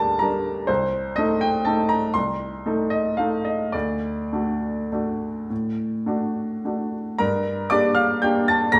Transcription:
grand piano
Already playing: D2 G3 D4 A#4 A5 D6
0.19 G3 D4 A#4 A#5
0.67 C2 C5
1.16 A3 D#4 A4 D#5
1.41 G5
1.65 A3 D#4 A4 A5
1.89 A#5
2.14 C2 C6
2.66 A3 D#4 A4
2.90 D#5
3.17 A3 D#4 A4 F5
3.45 D#5
3.72 D2 D5
4.33 A3 D4 F#4
4.92 A3 D4 F#4
5.50 A2
6.06 A3 D4 F#4
6.65 A3 D4 F#4
7.18 G2 A#4 A#5
7.70 A#3 D4 G4 D5 D6
7.95 F5 F6
8.22 A#3 D4 G4 G5 G6
8.48 A5 A6
8.72 D2 A#5 A#6

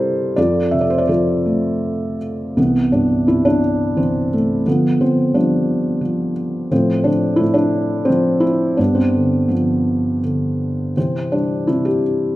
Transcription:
felt piano
Already playing: C3 G3 E4 G4 A4 A#4 C5 D5
0.36 F2 F4 A4 D5
0.71 C3 E5
0.81 D5
0.90 C5
0.98 D5
1.07 F3 F4 A4 C5
1.46 A3
2.57 C2 E3 B3
2.92 G2 D4
3.27 C3 E4
3.45 D4
3.96 E3 C4
4.33 A3
4.66 D3 F3 B3
5.01 F3 C4
5.34 F3 G3 D4
6.01 F3
6.72 A2 F3 C4
7.04 F3 D4
7.36 E4
7.41 A2
7.54 D4
8.05 C4
8.10 F3
8.40 E4
8.77 G2 B3 D4
8.95 C4
9.15 D3
9.48 F3 B3
10.23 D3
10.97 C3 E3 C4
11.32 G3 D4
11.67 C3 E4
11.85 G4

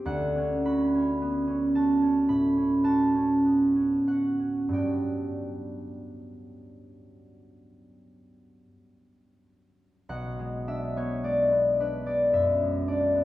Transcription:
harp
Already playing: G2 C4 G4 C5 E5
0.05 D2 F#5
0.36 C#4
0.65 F#4 B5
0.95 C#4
1.21 B3
1.47 C#4
1.75 F#4 A5
2.02 C#4
2.29 A2 B5
2.57 C#4
2.84 F#4 A5
3.15 C#4
3.45 B3
3.76 C#4
4.07 F#4 F#5
4.40 C#4
4.69 G2 F#3 B3 D4
4.74 G5
10.09 B1 F#5
10.39 G#3
10.67 D4 E5
10.96 B3 C#5
11.23 G#3 D5
11.52 B3
11.80 D4 B4
12.06 G#3 D5
12.33 F#2 E5
12.62 G#3
12.87 D4 D5
13.15 B3

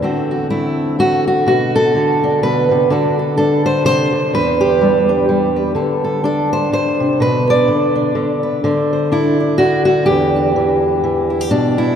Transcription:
steel-string acoustic guitar
0.02 D3 A3 C4 F#4
0.31 F#4
0.50 A3 E4
0.99 A3 F#4
1.27 F#4
1.46 B2 F#4
1.76 A4
1.95 D3
2.24 D4
2.43 B2 B4
2.71 C3
2.90 D3 D4 F#4 A4
3.19 A4
3.38 D4 A4
3.66 C5
3.85 C3 C5
4.12 D3
4.34 E2 B4
4.61 G4
4.81 G3
5.09 D4
5.29 G3
5.56 B4
5.75 D3 A4
6.04 A4
6.24 D4 A4
6.53 C5
6.72 D3 C5
7.00 C3
7.20 B2 B4
7.50 D5
7.68 D3
7.95 D4
8.15 D3
8.43 B4
8.64 D3 C5
8.93 C5
9.12 D4 E4
9.40 D4
9.58 D4 F#4
9.85 F#4
10.06 E2 G4
10.36 D4
10.56 E3
11.04 E3
11.30 E4
11.41 G4
11.51 B2 D4
11.78 E4

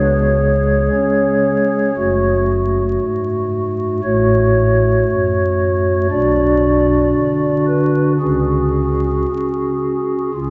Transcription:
pipe organ
Already playing: C#2 C#3 G#3 G#4 C#5
0.92 C#4 C#5
1.97 F#1 F#2 A3 F#4
3.00 G#2
4.03 A1 A2 A3 F#4 C#5
5.08 F#2
6.11 B1 B2 D4 F#4 D5
7.15 D3
7.67 B4
8.20 C#2 C#3 C#4 F#4 G#4
9.28 C#4
10.34 C#2 C#3 C#4 F4

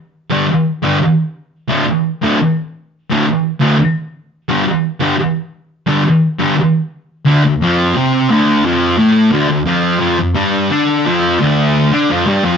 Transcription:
distorted electric guitar
0.30 G2 D3 G3
0.82 G2 D3 G3
1.68 D2 A2 D3
2.22 D2 A2 D3
3.10 D2 A2 D3
3.60 D2 A2 D3
4.49 G2 D3 G3
5.00 G2 D3 G3
5.87 G2 D3 G3
6.39 G2 D3 G3
7.25 D2 D3
7.44 D2
7.61 F2 F3
7.95 C3 C4
8.30 D2 D3
8.64 F2 F3
8.98 A2 A3
9.32 D2 D3
9.49 D2
9.66 F2 F3
10.00 F2 F3
10.19 F2
10.34 G2 G3
10.70 D3 D4
11.05 F2 F3
11.39 D2 D3
11.92 D3 D4
12.09 F2 F3
12.26 G2 G3
12.44 F2 F3

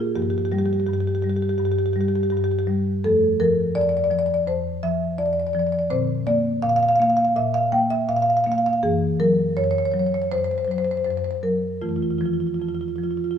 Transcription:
marimba
Already playing: A#2 G3 A#3 D4
0.00 F4
0.16 G2 F3 A#3 G4
0.22 G4
0.30 G4
0.38 G4
0.45 G4
0.52 G3 G4
0.59 G4
0.66 G4
0.73 G4
0.80 G4
0.86 G2 G4
0.93 G4
1.00 G4
1.07 G4
1.15 G4
1.22 G3 G4
1.29 G4
1.36 G4
1.42 G4
1.49 G4
1.58 G2 G4
1.65 G4
1.72 G4
1.79 G4
1.86 G4
1.93 G3 G4
2.01 G4
2.09 G4
2.16 G4
2.23 G4
2.30 G2 G4
2.37 G4
2.44 G4
2.51 G4
2.59 G4
2.67 G3
3.04 F2 F3 A3 A4
3.40 F3 A#4
3.75 F2 D5
3.81 D5
3.89 D5
3.97 D5
4.04 D5
4.11 F3 D5
4.19 D5
4.26 D5
4.34 D5
4.47 F2 C5
4.83 F3 E5
5.18 F2 D5
5.26 D5
5.33 D5
5.40 D5
5.47 D5
5.53 F3 D5
5.59 D5
5.67 D5
5.72 D5
5.79 D5
5.90 A#2 D3 C4 C5
6.27 A#3 D5
6.62 A#2 F5
6.69 F5
6.76 F5
6.83 F5
6.89 F5
6.96 F5
7.00 A#3 F5
7.10 F5
7.17 F5
7.25 F5
7.36 A#2 E5
7.54 F5
7.72 A#3 G5
7.90 E5
8.08 A#2 F5
8.17 F5
8.22 F5
8.30 F5
8.37 F5
8.44 A#3 F5
8.52 F5
8.58 F5
8.66 F5
8.73 F5
8.83 F#2 E3 A#3 G#4
9.20 F#3 A#4
9.57 F#2 C#5
9.64 C#5
9.71 C#5
9.78 C#5
9.85 C#5
9.92 F#3 C#5
9.99 C#5
10.06 C#5
10.14 C#5
10.22 C#5
10.32 F#2 C5
10.38 C5
10.44 C5
10.51 C5
10.58 C5
10.65 F#3 C5
10.71 C5
10.78 C5
10.85 C5
10.91 C5
10.97 C5
11.05 F#2 C5
11.11 C5
11.17 C5
11.24 C5
11.31 C5
11.43 F#3 A#4
11.82 F2 E3 A3 F4
11.89 F4
11.96 F4
12.03 F4
12.11 F4
12.18 F3 F4
12.26 F4
12.33 F4
12.40 F4
12.47 F4
12.54 F4
12.60 F2 F4
12.69 F4
12.75 F4
12.81 F4
12.88 F4
12.96 F3 F4
13.04 F4
13.11 F4
13.17 F4
13.24 F4
13.31 F4

